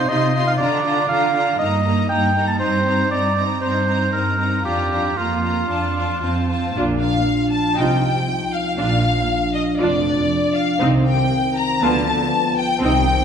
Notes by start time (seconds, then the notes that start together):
Already playing: C5
0.08 C3 D#4 F4 D#5 C6
0.34 D#4 F4 C6
0.47 F5
0.58 D3 D4 F4 D5 A#5
0.83 D4 F4 A#5
1.09 D3 D4 F4 F5 A#5
1.34 D4 F4 A#5
1.58 G2 A#3 D#4 D#5 A#5
1.85 A#3 D#4 A#5
2.09 G2 A#3 D#4 G5 A#5
2.35 A#3 D#4 A#5
2.47 A5
2.59 G2 C4 D#4 C5 A#5
2.85 C4 D#4 A#5
3.10 G2 C4 D#4 D5 A#5
3.35 C4 D#4 A#5
3.60 G2 C4 D#4 C5 A#5
3.85 C4 D#4 A#5
4.11 G2 C4 D#4 A#4 A#5
4.38 C4 D#4 A#5
4.64 F2 D4 F4 G4 A#5
4.90 D4 F4 A#5
5.17 F2 A#3 F4 A#5
5.44 F4 A#5
5.68 F2 D4 F4 A5
5.95 F4 A5
6.21 F2 C4 F4 A5
6.48 F4 A5
6.73 A#1 A#2 F3 D4 F4
6.99 F5
7.51 A5
7.76 C2 C3 D#4 F4 G5
8.53 F5
8.77 A#1 A#2 D4 F4 F5
9.53 D#5
9.79 F1 F2 D4 F4 D5
10.55 F5
10.80 C2 C3 D#3 C4 D#4
11.05 G5
11.56 A#5
11.82 D2 D3 F3 B3 F4 A5
12.57 G5
12.81 C2 C3 D#3 C4 D#4 G5